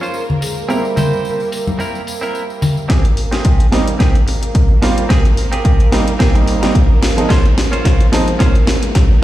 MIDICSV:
0, 0, Header, 1, 8, 480
1, 0, Start_track
1, 0, Key_signature, -4, "major"
1, 0, Tempo, 550459
1, 607, Time_signature, 4, 2, 24, 8
1, 8056, End_track
2, 0, Start_track
2, 0, Title_t, "Soft synth lead"
2, 0, Program_c, 0, 80
2, 0, Note_on_c, 0, 65, 115
2, 92, Note_off_c, 0, 65, 0
2, 371, Note_on_c, 0, 68, 96
2, 612, Note_on_c, 0, 70, 113
2, 625, Note_off_c, 0, 68, 0
2, 846, Note_off_c, 0, 70, 0
2, 851, Note_on_c, 0, 70, 111
2, 2254, Note_off_c, 0, 70, 0
2, 3255, Note_on_c, 0, 72, 104
2, 3361, Note_off_c, 0, 72, 0
2, 3490, Note_on_c, 0, 70, 109
2, 3863, Note_on_c, 0, 68, 101
2, 3876, Note_off_c, 0, 70, 0
2, 4220, Note_off_c, 0, 68, 0
2, 5169, Note_on_c, 0, 72, 105
2, 5276, Note_off_c, 0, 72, 0
2, 5406, Note_on_c, 0, 70, 109
2, 5690, Note_off_c, 0, 70, 0
2, 5714, Note_on_c, 0, 70, 70
2, 5780, Note_on_c, 0, 68, 101
2, 5793, Note_off_c, 0, 70, 0
2, 6126, Note_on_c, 0, 65, 83
2, 6139, Note_off_c, 0, 68, 0
2, 6367, Note_off_c, 0, 65, 0
2, 7088, Note_on_c, 0, 72, 108
2, 7327, Note_on_c, 0, 70, 108
2, 7340, Note_off_c, 0, 72, 0
2, 7703, Note_on_c, 0, 68, 105
2, 7716, Note_off_c, 0, 70, 0
2, 8056, Note_off_c, 0, 68, 0
2, 8056, End_track
3, 0, Start_track
3, 0, Title_t, "Clean electric guitar"
3, 0, Program_c, 1, 27
3, 11, Note_on_c, 1, 61, 75
3, 19, Note_on_c, 1, 65, 73
3, 27, Note_on_c, 1, 72, 87
3, 189, Note_off_c, 1, 61, 0
3, 193, Note_off_c, 1, 65, 0
3, 197, Note_off_c, 1, 72, 0
3, 597, Note_on_c, 1, 60, 98
3, 606, Note_on_c, 1, 64, 91
3, 614, Note_on_c, 1, 70, 110
3, 735, Note_off_c, 1, 60, 0
3, 739, Note_off_c, 1, 64, 0
3, 743, Note_off_c, 1, 70, 0
3, 840, Note_on_c, 1, 60, 80
3, 849, Note_on_c, 1, 64, 71
3, 856, Note_on_c, 1, 72, 87
3, 1216, Note_off_c, 1, 60, 0
3, 1220, Note_off_c, 1, 64, 0
3, 1224, Note_off_c, 1, 72, 0
3, 1559, Note_on_c, 1, 60, 80
3, 1567, Note_on_c, 1, 64, 72
3, 1575, Note_on_c, 1, 70, 84
3, 1749, Note_off_c, 1, 60, 0
3, 1753, Note_off_c, 1, 64, 0
3, 1757, Note_off_c, 1, 70, 0
3, 1930, Note_on_c, 1, 60, 76
3, 1939, Note_on_c, 1, 64, 73
3, 1947, Note_on_c, 1, 70, 87
3, 2109, Note_off_c, 1, 60, 0
3, 2113, Note_off_c, 1, 64, 0
3, 2117, Note_off_c, 1, 70, 0
3, 2518, Note_on_c, 1, 60, 104
3, 2526, Note_on_c, 1, 67, 97
3, 2534, Note_on_c, 1, 68, 114
3, 2655, Note_off_c, 1, 60, 0
3, 2659, Note_off_c, 1, 67, 0
3, 2663, Note_off_c, 1, 68, 0
3, 2890, Note_on_c, 1, 60, 86
3, 2898, Note_on_c, 1, 67, 80
3, 2907, Note_on_c, 1, 68, 91
3, 3189, Note_off_c, 1, 60, 0
3, 3193, Note_off_c, 1, 67, 0
3, 3197, Note_off_c, 1, 68, 0
3, 3480, Note_on_c, 1, 60, 86
3, 3488, Note_on_c, 1, 67, 81
3, 3497, Note_on_c, 1, 68, 92
3, 3616, Note_off_c, 1, 60, 0
3, 3620, Note_off_c, 1, 67, 0
3, 3624, Note_off_c, 1, 68, 0
3, 4439, Note_on_c, 1, 60, 106
3, 4447, Note_on_c, 1, 67, 94
3, 4455, Note_on_c, 1, 68, 115
3, 4575, Note_off_c, 1, 60, 0
3, 4579, Note_off_c, 1, 67, 0
3, 4583, Note_off_c, 1, 68, 0
3, 4810, Note_on_c, 1, 60, 90
3, 4818, Note_on_c, 1, 67, 80
3, 4826, Note_on_c, 1, 68, 97
3, 5109, Note_off_c, 1, 60, 0
3, 5113, Note_off_c, 1, 67, 0
3, 5117, Note_off_c, 1, 68, 0
3, 5399, Note_on_c, 1, 60, 86
3, 5406, Note_on_c, 1, 67, 80
3, 5415, Note_on_c, 1, 68, 99
3, 5535, Note_off_c, 1, 60, 0
3, 5539, Note_off_c, 1, 67, 0
3, 5543, Note_off_c, 1, 68, 0
3, 6357, Note_on_c, 1, 61, 114
3, 6364, Note_on_c, 1, 65, 100
3, 6373, Note_on_c, 1, 72, 122
3, 6494, Note_off_c, 1, 61, 0
3, 6498, Note_off_c, 1, 65, 0
3, 6502, Note_off_c, 1, 72, 0
3, 6729, Note_on_c, 1, 61, 94
3, 6737, Note_on_c, 1, 65, 84
3, 6745, Note_on_c, 1, 72, 99
3, 7028, Note_off_c, 1, 61, 0
3, 7032, Note_off_c, 1, 65, 0
3, 7036, Note_off_c, 1, 72, 0
3, 7317, Note_on_c, 1, 61, 93
3, 7324, Note_on_c, 1, 65, 81
3, 7333, Note_on_c, 1, 72, 96
3, 7454, Note_off_c, 1, 61, 0
3, 7458, Note_off_c, 1, 65, 0
3, 7462, Note_off_c, 1, 72, 0
3, 8056, End_track
4, 0, Start_track
4, 0, Title_t, "Violin section"
4, 0, Program_c, 2, 48
4, 0, Note_on_c, 2, 58, 76
4, 0, Note_on_c, 2, 70, 81
4, 2521, Note_off_c, 2, 58, 0
4, 2521, Note_off_c, 2, 70, 0
4, 2531, Note_on_c, 2, 70, 81
4, 2532, Note_on_c, 2, 58, 82
4, 8056, Note_off_c, 2, 58, 0
4, 8056, Note_off_c, 2, 70, 0
4, 8056, End_track
5, 0, Start_track
5, 0, Title_t, "Grand piano"
5, 0, Program_c, 3, 0
5, 0, Note_on_c, 3, 49, 71
5, 0, Note_on_c, 3, 56, 65
5, 0, Note_on_c, 3, 63, 66
5, 0, Note_on_c, 3, 65, 77
5, 0, Note_on_c, 3, 72, 66
5, 577, Note_off_c, 3, 49, 0
5, 579, Note_off_c, 3, 56, 0
5, 582, Note_off_c, 3, 72, 0
5, 583, Note_off_c, 3, 63, 0
5, 586, Note_off_c, 3, 65, 0
5, 596, Note_on_c, 3, 55, 67
5, 604, Note_on_c, 3, 58, 63
5, 609, Note_on_c, 3, 60, 65
5, 615, Note_on_c, 3, 64, 77
5, 2496, Note_off_c, 3, 55, 0
5, 2500, Note_off_c, 3, 58, 0
5, 2502, Note_off_c, 3, 60, 0
5, 2505, Note_off_c, 3, 64, 0
5, 3241, Note_on_c, 3, 55, 86
5, 3246, Note_on_c, 3, 58, 82
5, 3247, Note_on_c, 3, 60, 82
5, 3250, Note_on_c, 3, 63, 97
5, 3354, Note_off_c, 3, 55, 0
5, 3357, Note_off_c, 3, 58, 0
5, 3357, Note_off_c, 3, 60, 0
5, 3359, Note_off_c, 3, 63, 0
5, 4201, Note_on_c, 3, 55, 84
5, 4205, Note_on_c, 3, 58, 77
5, 4208, Note_on_c, 3, 60, 80
5, 4210, Note_on_c, 3, 65, 94
5, 4372, Note_off_c, 3, 55, 0
5, 4374, Note_off_c, 3, 58, 0
5, 4376, Note_off_c, 3, 60, 0
5, 4377, Note_off_c, 3, 65, 0
5, 5160, Note_on_c, 3, 55, 82
5, 5164, Note_on_c, 3, 58, 78
5, 5167, Note_on_c, 3, 60, 77
5, 5171, Note_on_c, 3, 63, 89
5, 5274, Note_off_c, 3, 55, 0
5, 5276, Note_off_c, 3, 58, 0
5, 5277, Note_off_c, 3, 60, 0
5, 5279, Note_off_c, 3, 63, 0
5, 5534, Note_on_c, 3, 55, 67
5, 5537, Note_on_c, 3, 58, 62
5, 5540, Note_on_c, 3, 60, 64
5, 5541, Note_on_c, 3, 63, 76
5, 5745, Note_off_c, 3, 55, 0
5, 5747, Note_off_c, 3, 58, 0
5, 5748, Note_off_c, 3, 60, 0
5, 5749, Note_off_c, 3, 63, 0
5, 5775, Note_on_c, 3, 55, 82
5, 5777, Note_on_c, 3, 58, 76
5, 5781, Note_on_c, 3, 60, 74
5, 5784, Note_on_c, 3, 63, 92
5, 5867, Note_off_c, 3, 55, 0
5, 5868, Note_off_c, 3, 58, 0
5, 5870, Note_off_c, 3, 60, 0
5, 5872, Note_off_c, 3, 63, 0
5, 6250, Note_on_c, 3, 53, 79
5, 6257, Note_on_c, 3, 56, 73
5, 6262, Note_on_c, 3, 60, 75
5, 6267, Note_on_c, 3, 63, 91
5, 6362, Note_off_c, 3, 53, 0
5, 6366, Note_off_c, 3, 56, 0
5, 6368, Note_off_c, 3, 60, 0
5, 6371, Note_off_c, 3, 63, 0
5, 7081, Note_on_c, 3, 53, 87
5, 7083, Note_on_c, 3, 56, 77
5, 7086, Note_on_c, 3, 60, 78
5, 7089, Note_on_c, 3, 63, 96
5, 7194, Note_off_c, 3, 53, 0
5, 7195, Note_off_c, 3, 56, 0
5, 7197, Note_off_c, 3, 60, 0
5, 7198, Note_off_c, 3, 63, 0
5, 8056, End_track
6, 0, Start_track
6, 0, Title_t, "Fingered electric bass"
6, 0, Program_c, 4, 33
6, 2527, Note_on_c, 4, 32, 85
6, 2822, Note_off_c, 4, 32, 0
6, 2901, Note_on_c, 4, 32, 86
6, 2969, Note_off_c, 4, 32, 0
6, 3008, Note_on_c, 4, 32, 83
6, 3092, Note_off_c, 4, 32, 0
6, 3250, Note_on_c, 4, 32, 87
6, 3333, Note_off_c, 4, 32, 0
6, 3381, Note_on_c, 4, 39, 74
6, 3448, Note_off_c, 4, 39, 0
6, 3729, Note_on_c, 4, 32, 77
6, 4023, Note_off_c, 4, 32, 0
6, 4101, Note_on_c, 4, 32, 98
6, 4169, Note_off_c, 4, 32, 0
6, 4209, Note_on_c, 4, 39, 97
6, 4292, Note_off_c, 4, 39, 0
6, 4581, Note_on_c, 4, 32, 80
6, 4724, Note_off_c, 4, 32, 0
6, 4820, Note_on_c, 4, 32, 88
6, 4888, Note_off_c, 4, 32, 0
6, 4928, Note_on_c, 4, 32, 90
6, 5012, Note_off_c, 4, 32, 0
6, 5168, Note_on_c, 4, 32, 92
6, 5252, Note_off_c, 4, 32, 0
6, 5302, Note_on_c, 4, 39, 76
6, 5369, Note_off_c, 4, 39, 0
6, 5541, Note_on_c, 4, 36, 82
6, 5684, Note_off_c, 4, 36, 0
6, 5780, Note_on_c, 4, 32, 79
6, 5848, Note_off_c, 4, 32, 0
6, 6366, Note_on_c, 4, 37, 96
6, 6662, Note_off_c, 4, 37, 0
6, 6740, Note_on_c, 4, 37, 95
6, 6808, Note_off_c, 4, 37, 0
6, 6846, Note_on_c, 4, 37, 91
6, 6931, Note_off_c, 4, 37, 0
6, 7088, Note_on_c, 4, 37, 92
6, 7171, Note_off_c, 4, 37, 0
6, 7218, Note_on_c, 4, 44, 77
6, 7287, Note_off_c, 4, 44, 0
6, 7567, Note_on_c, 4, 37, 83
6, 7862, Note_off_c, 4, 37, 0
6, 7940, Note_on_c, 4, 37, 102
6, 8008, Note_off_c, 4, 37, 0
6, 8056, End_track
7, 0, Start_track
7, 0, Title_t, "Muted clean electric guitar strokes"
7, 359, Note_on_c, 9, 29, 31
7, 446, Note_off_c, 9, 29, 0
7, 2280, Note_on_c, 9, 29, 31
7, 2367, Note_off_c, 9, 29, 0
7, 2757, Note_on_c, 9, 29, 31
7, 2845, Note_off_c, 9, 29, 0
7, 3721, Note_on_c, 9, 29, 86
7, 3808, Note_off_c, 9, 29, 0
7, 3852, Note_on_c, 9, 29, 32
7, 3939, Note_off_c, 9, 29, 0
7, 4200, Note_on_c, 9, 29, 34
7, 4287, Note_off_c, 9, 29, 0
7, 4682, Note_on_c, 9, 29, 33
7, 4770, Note_off_c, 9, 29, 0
7, 5637, Note_on_c, 9, 29, 88
7, 5725, Note_off_c, 9, 29, 0
7, 5769, Note_on_c, 9, 29, 32
7, 5856, Note_off_c, 9, 29, 0
7, 6118, Note_on_c, 9, 29, 35
7, 6205, Note_off_c, 9, 29, 0
7, 6598, Note_on_c, 9, 29, 33
7, 6685, Note_off_c, 9, 29, 0
7, 7558, Note_on_c, 9, 29, 87
7, 7645, Note_off_c, 9, 29, 0
7, 7689, Note_on_c, 9, 29, 35
7, 7776, Note_off_c, 9, 29, 0
7, 8056, End_track
8, 0, Start_track
8, 0, Title_t, "Drums"
8, 25, Note_on_c, 9, 54, 36
8, 112, Note_off_c, 9, 54, 0
8, 120, Note_on_c, 9, 54, 51
8, 207, Note_off_c, 9, 54, 0
8, 261, Note_on_c, 9, 64, 69
8, 348, Note_off_c, 9, 64, 0
8, 367, Note_on_c, 9, 46, 90
8, 367, Note_on_c, 9, 54, 91
8, 454, Note_off_c, 9, 46, 0
8, 454, Note_off_c, 9, 54, 0
8, 503, Note_on_c, 9, 54, 35
8, 590, Note_off_c, 9, 54, 0
8, 610, Note_on_c, 9, 54, 51
8, 697, Note_off_c, 9, 54, 0
8, 740, Note_on_c, 9, 54, 34
8, 828, Note_off_c, 9, 54, 0
8, 845, Note_on_c, 9, 54, 80
8, 846, Note_on_c, 9, 46, 88
8, 847, Note_on_c, 9, 64, 86
8, 853, Note_on_c, 9, 63, 77
8, 933, Note_off_c, 9, 54, 0
8, 934, Note_off_c, 9, 46, 0
8, 935, Note_off_c, 9, 64, 0
8, 940, Note_off_c, 9, 63, 0
8, 986, Note_on_c, 9, 54, 34
8, 1073, Note_off_c, 9, 54, 0
8, 1088, Note_on_c, 9, 54, 53
8, 1175, Note_off_c, 9, 54, 0
8, 1220, Note_on_c, 9, 54, 31
8, 1307, Note_off_c, 9, 54, 0
8, 1327, Note_on_c, 9, 46, 91
8, 1330, Note_on_c, 9, 54, 79
8, 1415, Note_off_c, 9, 46, 0
8, 1417, Note_off_c, 9, 54, 0
8, 1459, Note_on_c, 9, 63, 83
8, 1461, Note_on_c, 9, 54, 38
8, 1546, Note_off_c, 9, 63, 0
8, 1548, Note_off_c, 9, 54, 0
8, 1568, Note_on_c, 9, 54, 55
8, 1655, Note_off_c, 9, 54, 0
8, 1702, Note_on_c, 9, 54, 36
8, 1789, Note_off_c, 9, 54, 0
8, 1806, Note_on_c, 9, 46, 94
8, 1811, Note_on_c, 9, 54, 85
8, 1894, Note_off_c, 9, 46, 0
8, 1898, Note_off_c, 9, 54, 0
8, 1939, Note_on_c, 9, 54, 39
8, 2026, Note_off_c, 9, 54, 0
8, 2048, Note_on_c, 9, 54, 54
8, 2135, Note_off_c, 9, 54, 0
8, 2180, Note_on_c, 9, 54, 33
8, 2267, Note_off_c, 9, 54, 0
8, 2286, Note_on_c, 9, 46, 93
8, 2286, Note_on_c, 9, 54, 82
8, 2286, Note_on_c, 9, 64, 87
8, 2373, Note_off_c, 9, 46, 0
8, 2373, Note_off_c, 9, 64, 0
8, 2374, Note_off_c, 9, 54, 0
8, 2418, Note_on_c, 9, 54, 37
8, 2505, Note_off_c, 9, 54, 0
8, 2527, Note_on_c, 9, 36, 113
8, 2527, Note_on_c, 9, 38, 46
8, 2527, Note_on_c, 9, 42, 65
8, 2614, Note_off_c, 9, 36, 0
8, 2614, Note_off_c, 9, 38, 0
8, 2614, Note_off_c, 9, 42, 0
8, 2659, Note_on_c, 9, 42, 36
8, 2746, Note_off_c, 9, 42, 0
8, 2765, Note_on_c, 9, 46, 92
8, 2852, Note_off_c, 9, 46, 0
8, 2899, Note_on_c, 9, 38, 42
8, 2899, Note_on_c, 9, 42, 50
8, 2986, Note_off_c, 9, 38, 0
8, 2986, Note_off_c, 9, 42, 0
8, 3006, Note_on_c, 9, 42, 63
8, 3008, Note_on_c, 9, 36, 106
8, 3093, Note_off_c, 9, 42, 0
8, 3095, Note_off_c, 9, 36, 0
8, 3140, Note_on_c, 9, 42, 37
8, 3227, Note_off_c, 9, 42, 0
8, 3248, Note_on_c, 9, 38, 49
8, 3248, Note_on_c, 9, 46, 101
8, 3335, Note_off_c, 9, 38, 0
8, 3335, Note_off_c, 9, 46, 0
8, 3379, Note_on_c, 9, 42, 51
8, 3466, Note_off_c, 9, 42, 0
8, 3488, Note_on_c, 9, 36, 115
8, 3489, Note_on_c, 9, 38, 47
8, 3489, Note_on_c, 9, 42, 61
8, 3575, Note_off_c, 9, 36, 0
8, 3576, Note_off_c, 9, 38, 0
8, 3576, Note_off_c, 9, 42, 0
8, 3622, Note_on_c, 9, 42, 36
8, 3709, Note_off_c, 9, 42, 0
8, 3729, Note_on_c, 9, 46, 96
8, 3816, Note_off_c, 9, 46, 0
8, 3860, Note_on_c, 9, 42, 53
8, 3947, Note_off_c, 9, 42, 0
8, 3967, Note_on_c, 9, 36, 113
8, 3967, Note_on_c, 9, 42, 62
8, 4054, Note_off_c, 9, 36, 0
8, 4054, Note_off_c, 9, 42, 0
8, 4207, Note_on_c, 9, 38, 53
8, 4207, Note_on_c, 9, 46, 99
8, 4294, Note_off_c, 9, 38, 0
8, 4294, Note_off_c, 9, 46, 0
8, 4340, Note_on_c, 9, 42, 53
8, 4427, Note_off_c, 9, 42, 0
8, 4447, Note_on_c, 9, 36, 120
8, 4449, Note_on_c, 9, 38, 56
8, 4449, Note_on_c, 9, 42, 66
8, 4534, Note_off_c, 9, 36, 0
8, 4536, Note_off_c, 9, 38, 0
8, 4536, Note_off_c, 9, 42, 0
8, 4580, Note_on_c, 9, 42, 36
8, 4667, Note_off_c, 9, 42, 0
8, 4686, Note_on_c, 9, 46, 99
8, 4773, Note_off_c, 9, 46, 0
8, 4818, Note_on_c, 9, 42, 51
8, 4906, Note_off_c, 9, 42, 0
8, 4927, Note_on_c, 9, 36, 112
8, 4927, Note_on_c, 9, 42, 62
8, 5014, Note_off_c, 9, 36, 0
8, 5014, Note_off_c, 9, 42, 0
8, 5059, Note_on_c, 9, 42, 38
8, 5146, Note_off_c, 9, 42, 0
8, 5166, Note_on_c, 9, 38, 62
8, 5166, Note_on_c, 9, 46, 108
8, 5253, Note_off_c, 9, 38, 0
8, 5253, Note_off_c, 9, 46, 0
8, 5298, Note_on_c, 9, 42, 51
8, 5385, Note_off_c, 9, 42, 0
8, 5407, Note_on_c, 9, 36, 119
8, 5407, Note_on_c, 9, 38, 63
8, 5407, Note_on_c, 9, 42, 62
8, 5494, Note_off_c, 9, 36, 0
8, 5494, Note_off_c, 9, 38, 0
8, 5494, Note_off_c, 9, 42, 0
8, 5540, Note_on_c, 9, 42, 36
8, 5627, Note_off_c, 9, 42, 0
8, 5646, Note_on_c, 9, 46, 101
8, 5734, Note_off_c, 9, 46, 0
8, 5780, Note_on_c, 9, 38, 62
8, 5780, Note_on_c, 9, 42, 55
8, 5867, Note_off_c, 9, 38, 0
8, 5867, Note_off_c, 9, 42, 0
8, 5886, Note_on_c, 9, 36, 116
8, 5888, Note_on_c, 9, 42, 61
8, 5973, Note_off_c, 9, 36, 0
8, 5976, Note_off_c, 9, 42, 0
8, 6126, Note_on_c, 9, 38, 71
8, 6126, Note_on_c, 9, 46, 105
8, 6213, Note_off_c, 9, 38, 0
8, 6213, Note_off_c, 9, 46, 0
8, 6261, Note_on_c, 9, 42, 53
8, 6348, Note_off_c, 9, 42, 0
8, 6366, Note_on_c, 9, 36, 127
8, 6368, Note_on_c, 9, 38, 72
8, 6368, Note_on_c, 9, 42, 62
8, 6453, Note_off_c, 9, 36, 0
8, 6455, Note_off_c, 9, 38, 0
8, 6455, Note_off_c, 9, 42, 0
8, 6500, Note_on_c, 9, 42, 33
8, 6587, Note_off_c, 9, 42, 0
8, 6607, Note_on_c, 9, 38, 72
8, 6607, Note_on_c, 9, 46, 104
8, 6694, Note_off_c, 9, 38, 0
8, 6694, Note_off_c, 9, 46, 0
8, 6740, Note_on_c, 9, 42, 49
8, 6827, Note_off_c, 9, 42, 0
8, 6846, Note_on_c, 9, 36, 118
8, 6848, Note_on_c, 9, 38, 77
8, 6848, Note_on_c, 9, 42, 64
8, 6933, Note_off_c, 9, 36, 0
8, 6936, Note_off_c, 9, 38, 0
8, 6936, Note_off_c, 9, 42, 0
8, 6980, Note_on_c, 9, 42, 36
8, 7067, Note_off_c, 9, 42, 0
8, 7087, Note_on_c, 9, 38, 80
8, 7087, Note_on_c, 9, 46, 113
8, 7174, Note_off_c, 9, 38, 0
8, 7174, Note_off_c, 9, 46, 0
8, 7217, Note_on_c, 9, 42, 49
8, 7305, Note_off_c, 9, 42, 0
8, 7326, Note_on_c, 9, 36, 127
8, 7326, Note_on_c, 9, 38, 79
8, 7326, Note_on_c, 9, 42, 62
8, 7413, Note_off_c, 9, 36, 0
8, 7413, Note_off_c, 9, 38, 0
8, 7413, Note_off_c, 9, 42, 0
8, 7458, Note_on_c, 9, 42, 34
8, 7545, Note_off_c, 9, 42, 0
8, 7563, Note_on_c, 9, 38, 83
8, 7563, Note_on_c, 9, 46, 105
8, 7650, Note_off_c, 9, 38, 0
8, 7650, Note_off_c, 9, 46, 0
8, 7696, Note_on_c, 9, 42, 53
8, 7783, Note_off_c, 9, 42, 0
8, 7805, Note_on_c, 9, 38, 83
8, 7805, Note_on_c, 9, 42, 63
8, 7806, Note_on_c, 9, 36, 126
8, 7892, Note_off_c, 9, 38, 0
8, 7892, Note_off_c, 9, 42, 0
8, 7893, Note_off_c, 9, 36, 0
8, 8056, End_track
0, 0, End_of_file